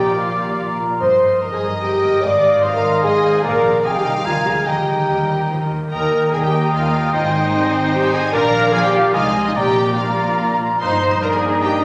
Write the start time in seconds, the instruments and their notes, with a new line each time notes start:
Already playing: double bass section A#1, cello section A#2, harp A#2 F3 F4, viola section G4, french horn section G4, violin section D5 G5, oboe D5, flute A#5
0.08 harp A#4
0.18 viola section F4, french horn section F4, harp D5, violin section F5, flute D6
0.28 harp F5
0.38 harp A#5
0.49 harp D6
0.60 harp A#5, flute C6
0.69 harp F5, flute A#5
0.80 harp A#4
0.90 harp F4
1.00 double bass section G1, cello section G2, harp G2, viola section C5, french horn section C5, oboe D#5, violin section C6
1.11 harp G3
1.21 double bass section G1, cello section G2, harp D#4
1.32 harp A#4
1.41 double bass section G1, cello section G2, viola section A#4, french horn section A#4, violin section D#5 A#5, harp D#5
1.52 french horn section G#4, viola section G#4, harp A#4, violin section G#5
1.62 double bass section G1, cello section G2, harp A#5
1.72 harp D#6
1.82 double bass section G1, cello section G2, viola section G4, french horn section G4, violin section G5, harp A#5
1.93 harp D#5
2.03 double bass section G1, cello section G2, harp A#4
2.13 harp D#4
2.23 double bass section G#1, harp G#2, cello section G#2, viola section D5, french horn section D5, flute F5, violin section D6
2.33 harp D#3
2.43 double bass section G#1, cello section G#2, harp D#4
2.54 harp C5
2.63 double bass section G#1, cello section G#2, viola section C5, french horn section C5, violin section F5 C6, harp F5
2.73 french horn section A#4, viola section A#4, harp D#5, violin section A#5
2.84 double bass section G#1, cello section G#2, harp C6
2.94 harp F6
3.03 double bass section G#1, cello section G#2, viola section G#4, french horn section G#4, violin section D#5 G#5, harp C6
3.14 harp D#5
3.24 double bass section G#1, cello section G#2, harp C5
3.34 harp D#4
3.44 double bass section A#1, cello section A#2, harp A#2, viola section A#4, french horn section A#4, violin section D5 A#5, oboe D5, flute F5
3.54 harp F3
3.64 double bass section A#1, cello section A#2, harp D4
3.75 harp A#4
3.84 double bass section C2, harp C3, cello section C3, viola section G#4, french horn section G#4, oboe D#5, violin section F5 G#5, flute G5
3.94 harp G3, viola section G4, french horn section G4, violin section G5
4.04 double bass section C2, cello section C3, harp C4, viola section D#4, french horn section D#4, violin section D#5
4.15 harp G4
4.25 double bass section D2, cello section D3, harp D3, viola section F4, french horn section F4, violin section F5, oboe G#5, flute A#5
4.35 harp G#3
4.45 double bass section D2, cello section D3, harp A#3, viola section G#4, french horn section G#4, violin section G#5
4.56 harp G#4
4.66 double bass section D#2, harp D#3, cello section D#3, viola section G4, french horn section G4, violin section D#5 G5, oboe G5, flute A#5
4.77 harp D#4
4.88 double bass section D#2, cello section D#3, harp A#3
4.98 harp G4
5.09 double bass section D#2, cello section G3, harp A#4
5.19 harp G4
5.30 double bass section D#2, harp G5
5.41 harp A#5
5.50 double bass section D#2, cello section F3, harp G5
5.61 cello section D#3, harp A#4
5.71 double bass section D#2, harp G4
5.82 harp A#3
5.92 double bass section D#2, harp D#3, violin section A#4 G5 A#5, viola section A#4, oboe D#5, flute G5
6.02 harp A#3, violin section D#5 A#5
6.12 harp D#4, violin section A#4 G5
6.23 harp G4, violin section D#5 A#5
6.33 double bass section D#2, french horn section G3 D#4, cello section A#3, viola section G#4, harp A#4, violin section A#4 G5 G#5
6.43 viola section G4, violin section D#5 G5 A#5, harp D#5
6.53 violin section A#4 G5, harp G5
6.64 violin section D#5 A#5, harp A#5
6.73 double bass section D#2, french horn section G3 D#4, viola section F4, violin section A#4 F5 G5, harp G5
6.83 harp D#5, violin section D#5 A#5
6.93 harp G4, violin section A#4 G5
7.04 harp D#4, violin section D#5 A#5
7.13 double bass section G#1, harp G#2, cello section G#3, viola section D#4, oboe C5, violin section D#5 G5
7.20 harp D#3, viola section F4
7.25 viola section D#4, violin section C5 G#5
7.34 harp D#4, violin section D#5 G5
7.43 harp G4, violin section C5 G#5
7.53 double bass section G#1, french horn section G3 C4, cello section C4, harp C5, violin section D#5 G5
7.63 violin section C5 G#5, harp D#5
7.74 violin section D#5 G5, harp G5
7.83 violin section C5 G#5, harp C6
7.93 double bass section G#1, french horn section G3 C4, cello section D#4, viola section G4, violin section D#5 G5, harp G5
8.03 violin section C5 G#5, harp D#5
8.13 harp G4, viola section G#4, violin section D#5 G5 G#5
8.24 harp D#4, violin section C5 G#5
8.33 double bass section A#1, harp A#2, cello section D4, viola section A#4, oboe D5, violin section D5 F5 A#5, flute F5
8.44 harp F3
8.54 harp D4
8.64 harp F4
8.73 cello section F3, french horn section F3 D4, viola section G#4, harp A#4, violin section G#5
8.84 viola section G4, harp D5, violin section G5
8.94 harp F5
9.04 harp A#5
9.14 double bass section C2, harp C3, french horn section G#3 D#4, cello section G#3, viola section F4, oboe D#5, violin section D#5 F5 G#5, flute G#5
9.25 harp G#3
9.35 harp C4
9.45 harp D#4, viola section D#4, violin section D#5
9.56 double bass section A#1, harp A#2, cello section A#3, viola section G4, oboe D5, violin section D5 G5 A#5, flute A#5
9.67 harp F3
9.77 harp D4
9.88 harp F4
9.92 viola section G4
9.98 french horn section A#3 D4, viola section F4, harp A#4, violin section D5 F5 A#5
10.09 harp D5
10.19 harp F5
10.29 harp A#5
10.39 french horn section A#3 D4, harp F5
10.50 harp D5
10.61 harp F4
10.71 harp D4
10.80 double bass section G1, harp G2, french horn section A#3 D#4, cello section D#4, viola section C5, oboe D#5, violin section C6
10.92 harp G3
11.02 harp D#4
11.12 harp G4
11.22 cello section D4, harp A#4, viola section A#4, violin section D#5 A#5
11.32 viola section G#4, harp D#5, violin section G#5
11.42 harp G5
11.53 harp A#5
11.63 viola section G4, violin section D#5 G5 A#5, harp G5
11.73 harp D#5